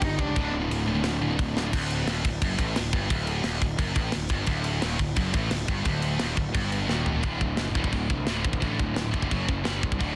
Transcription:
Already playing: overdriven electric guitar G2 D3 G3
0.02 picked electric bass G1, distorted electric guitar G2 D3, lead electric guitar D#4, kick, crash
0.18 picked electric bass C#2, distorted electric guitar G2 D3, lead electric guitar D4, kick
0.27 distorted electric guitar G2 D3
0.36 picked electric bass D1, distorted electric guitar D2 A2 D3, kick, crash
0.51 picked electric bass D1, distorted electric guitar D2 A2
0.62 distorted electric guitar D2 A2
0.70 picked electric bass D1, distorted electric guitar D2 A2, crash
0.86 picked electric bass D1, distorted electric guitar D2 A2, overdriven electric guitar D3
0.95 distorted electric guitar D2 A2
1.04 picked electric bass D1, distorted electric guitar D2 A2, snare, crash
1.21 picked electric bass D1, distorted electric guitar D2 A2
1.30 distorted electric guitar D2 A2
1.39 picked electric bass D1, distorted electric guitar D2 A2, kick, crash
1.56 picked electric bass D1, distorted electric guitar D2 A2, snare
1.61 distorted electric guitar D2 A2
1.67 distorted electric guitar D2 A2
1.73 picked electric bass D1, distorted electric guitar D2, kick, crash
1.91 crash
2.06 picked electric bass D#1, distorted electric guitar D#2, snare, crash
2.25 picked electric bass D1, distorted electric guitar D2, kick, crash
2.42 picked electric bass F#1, distorted electric guitar F#2, kick, crash
2.58 picked electric bass A1, distorted electric guitar A2, kick, crash
2.76 picked electric bass D1, distorted electric guitar D2, snare, crash
2.93 picked electric bass G1, distorted electric guitar G2, kick, crash
3.10 picked electric bass D1, distorted electric guitar D2, kick, crash
3.27 crash
3.43 picked electric bass D#1, distorted electric guitar D#2, snare, crash
3.62 picked electric bass D1, distorted electric guitar D2, kick, crash
3.78 picked electric bass F#1, distorted electric guitar F#2, kick, crash
3.94 picked electric bass A1, distorted electric guitar A2, kick, crash
4.12 picked electric bass D1, distorted electric guitar D2, snare, crash
4.29 picked electric bass G1, distorted electric guitar G2, kick, crash
4.46 picked electric bass D1, distorted electric guitar D2, kick, crash
4.64 crash
4.82 picked electric bass D#1, distorted electric guitar D#2, snare, crash
4.99 picked electric bass D1, distorted electric guitar D2, kick, crash
5.16 picked electric bass F#1, distorted electric guitar F#2, kick, crash
5.33 picked electric bass A1, distorted electric guitar A2, kick, crash
5.51 picked electric bass D1, distorted electric guitar D2, snare, crash
5.68 picked electric bass G1, distorted electric guitar G2, kick, crash
5.85 picked electric bass D1, distorted electric guitar D2, kick, crash
6.02 crash
6.19 picked electric bass D#1, distorted electric guitar D#2, snare, crash
6.37 picked electric bass D1, distorted electric guitar D2, kick, crash
6.54 picked electric bass G1, distorted electric guitar G2, kick, crash
6.72 crash
6.88 picked electric bass D#1, distorted electric guitar D#2, snare
7.06 floor tom
7.23 picked electric bass D1, distorted electric guitar D2 A2 D3, kick, china
7.41 picked electric bass D1, distorted electric guitar D2 A2, overdriven electric guitar D3, kick
7.57 picked electric bass F#1, distorted electric guitar D2 A2, overdriven electric guitar D3, snare, china
7.75 picked electric bass D1, distorted electric guitar D2 A2 D3, kick
7.84 kick
7.92 picked electric bass D1, distorted electric guitar D2 A2, overdriven electric guitar D3, kick, china
8.09 picked electric bass C2, distorted electric guitar D2 A2, overdriven electric guitar D3, kick
8.26 picked electric bass D1, distorted electric guitar D2 A2 D3, snare, china
8.43 picked electric bass A1, distorted electric guitar D2 A2, overdriven electric guitar D3, kick
8.53 kick
8.60 picked electric bass A1, distorted electric guitar D2 A2 D3, kick, china
8.78 picked electric bass D1, distorted electric guitar D2 A2, overdriven electric guitar D3, kick
8.94 picked electric bass D1, distorted electric guitar D2 A2, overdriven electric guitar D3, snare, china
9.11 picked electric bass F#1, distorted electric guitar D2 A2 D3, kick
9.22 kick
9.29 picked electric bass F#1, distorted electric guitar F#2 C#3 F#3, kick, china
9.47 picked electric bass F#1, distorted electric guitar F#2 C#3, overdriven electric guitar F#3, kick
9.64 picked electric bass G1, distorted electric guitar G2 D3 G3, snare, china
9.82 picked electric bass C2, distorted electric guitar G2 D3, overdriven electric guitar G3, kick
9.92 kick
9.99 picked electric bass D1, distorted electric guitar D2 A2 D3, kick, china

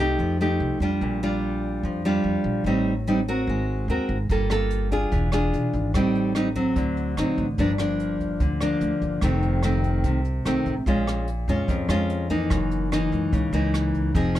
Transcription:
Already playing: upright bass C2, nylon-string guitar C3
0.00 nylon-string guitar A3 D#4 G4
0.19 upright bass F2, nylon-string guitar F3
0.41 nylon-string guitar A3 D#4 G4
0.60 upright bass C2
0.80 upright bass F2, nylon-string guitar G3 D4 F4
1.01 upright bass A#1, nylon-string guitar A#2
1.23 nylon-string guitar G3 D4 F4
1.83 upright bass F2, nylon-string guitar F3
2.05 nylon-string guitar G3 D4 F4
2.24 upright bass F2
2.44 upright bass A#1
2.64 upright bass A1, nylon-string guitar A2 G3 C4 D#4
3.07 nylon-string guitar G3 C4 D#4
3.28 nylon-string guitar C4 F#4 A#4
3.47 upright bass G#1, nylon-string guitar G#3
3.88 upright bass D#2, nylon-string guitar C4 F#4 A#4
4.09 upright bass G#1
4.29 upright bass G1, nylon-string guitar G3 A#3 F4 A4, kick, closed hi-hat
4.50 nylon-string guitar A#3 F4 A4, cross-stick, closed hi-hat
4.70 closed hi-hat
4.91 nylon-string guitar D4 F4 G#4, kick, closed hi-hat
5.12 upright bass E1, nylon-string guitar E3, kick, closed hi-hat
5.32 nylon-string guitar D4 F4 G#4, cross-stick, closed hi-hat
5.53 upright bass B1, closed hi-hat
5.73 upright bass G#1, kick, closed hi-hat
5.94 upright bass A1, nylon-string guitar A2 G3 C4 D#4, kick, cross-stick, closed hi-hat
6.15 closed hi-hat
6.35 nylon-string guitar G3 C4 D#4, cross-stick, closed hi-hat
6.56 nylon-string guitar F#3 C4, kick, closed hi-hat
6.76 upright bass D2, nylon-string guitar D3, kick, closed hi-hat
6.97 closed hi-hat
7.17 upright bass A1, nylon-string guitar F#3 C4 D#4, cross-stick, closed hi-hat
7.38 upright bass A1, kick, closed hi-hat
7.58 upright bass G1, nylon-string guitar G2 F3 A#3 D4, kick, closed hi-hat
7.78 nylon-string guitar F3 A#3 D4, cross-stick, closed hi-hat
8.00 closed hi-hat
8.20 kick, closed hi-hat
8.40 upright bass D2, nylon-string guitar D3, kick, closed hi-hat
8.61 nylon-string guitar F3 A#3 D4, cross-stick, closed hi-hat
8.81 upright bass D2, closed hi-hat
9.02 upright bass G1, kick, closed hi-hat
9.21 upright bass F1, nylon-string guitar F2 D#3 A3 C4, kick, cross-stick, closed hi-hat
9.42 closed hi-hat
9.63 nylon-string guitar D#3 A3 C4, cross-stick, closed hi-hat
9.84 kick, closed hi-hat
10.04 upright bass C2, nylon-string guitar C3, kick, closed hi-hat
10.25 closed hi-hat
10.45 upright bass C2, nylon-string guitar D#3 A3 C4, cross-stick, closed hi-hat
10.66 upright bass A1, kick, closed hi-hat
10.86 upright bass A#1, nylon-string guitar A#2 G#3 C#4 F4, kick, closed hi-hat
11.07 cross-stick, closed hi-hat
11.27 closed hi-hat
11.48 upright bass F2, nylon-string guitar G#3 C#4 F4, kick, closed hi-hat
11.68 upright bass F2, nylon-string guitar F2, kick, closed hi-hat
11.88 upright bass F2, nylon-string guitar G#3 C#4 F4, cross-stick, closed hi-hat
12.10 closed hi-hat
12.30 nylon-string guitar E3 A#3 D#4, kick, closed hi-hat
12.50 upright bass F#1, nylon-string guitar F#2, kick, cross-stick, closed hi-hat
12.71 closed hi-hat
12.92 nylon-string guitar E3 A#3 D#4, cross-stick, closed hi-hat
13.12 upright bass C#2, kick, closed hi-hat
13.33 upright bass C#2, nylon-string guitar C#3, kick, closed hi-hat
13.52 upright bass C#2, nylon-string guitar E3 A#3 D#4, closed hi-hat
13.74 cross-stick, closed hi-hat
13.94 kick, closed hi-hat
14.15 upright bass F1, nylon-string guitar F3 C4 D#4 G#4, kick, closed hi-hat
14.35 cross-stick

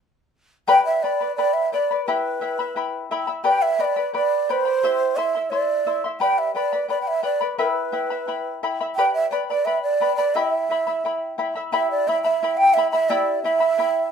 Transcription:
0.68 charango G4 B4 D5 G5 B5, quena G5
0.85 quena E5
1.03 charango B4 D5 G5 B5, quena D5
1.21 charango B4 D5 B5
1.36 charango B4 D5 G5 B5, quena D5
1.53 quena E5
1.72 charango B4 D5 G5 B5, quena D5
1.91 charango B4 D5 B5
2.05 charango E4 G4 E5 G5 B5, quena B4
2.41 charango E4 E5 G5 B5
2.59 charango E4 E5 B5
2.76 charango E4 E5 G5 B5
3.11 charango E4 E5 G5 B5
3.27 charango E4 E5 B5
3.44 charango G4 B4 D5 G5 B5, quena G5
3.62 quena E5
3.79 charango B4 D5 G5 B5, quena D#5
3.84 quena D5
3.96 charango B4 D5 B5
4.14 charango B4 D5 G5 B5, quena D5
4.49 charango B4 D5 G5 B5, quena C5
4.65 charango B4 D5 B5
4.83 charango E4 G4 C5 E5 C6
5.17 charango E4 C5 E5 C6, quena E5
5.35 charango E4 E5 C6
5.50 charango E4 C5 E5 C6, quena D5
5.87 charango E4 C5 E5 C6
6.04 charango E4 E5 C6
6.20 charango G4 B4 D5 G5 B5, quena G5
6.38 quena E5
6.55 charango B4 D5 G5 B5, quena D5
6.73 charango B4 D5 B5
6.88 charango B4 D5 G5 B5, quena D5
7.01 quena G5
7.08 quena E5
7.23 charango B4 D5 G5 B5, quena D5
7.41 charango B4 D5 B5
7.58 charango E4 B4 E5 G5 B5, quena B4
7.92 charango E4 E5 G5 B5
8.10 charango E4 E5 B5
8.28 charango E4 E5 G5 B5
8.63 charango E4 E5 G5 B5
8.81 charango E4 E5 B5
8.96 charango G4 B4 D5 G5 B5, quena G5
9.14 quena E5
9.31 charango B4 D5 G5 B5, quena D5
9.48 charango B4 D5 B5, quena D5
9.65 charango B4 D5 G5 B5, quena E5
9.83 quena D5
10.00 charango B4 D5 G5 B5
10.17 charango B4 D5 B5, quena D5
10.35 charango E4 G4 E5 G5 B5, quena D#5
10.49 quena E5
10.70 charango E4 E5 G5 B5
10.87 charango E4 E5 B5
11.05 charango E4 E5 G5 B5
11.38 charango E4 E5 G5 B5
11.56 charango E4 E5 B5
11.72 charango E4 G4 E5 G5 B5, quena E5
11.91 quena D5
12.07 charango E4 E5 G5 B5, quena E5
12.23 charango E4 E5 B5, quena E5
12.43 charango E4 E5 G5 B5
12.57 quena G5
12.74 charango E4 E5 G5, quena E5
12.78 charango B5
12.91 charango E4 E5 B5, quena E5
13.10 charango E4 G4 E5 G5 B5, quena D5
13.43 charango E4 E5 G5 B5, quena E5
13.60 charango E4 E5 B5
13.78 charango E4 E5 G5 B5

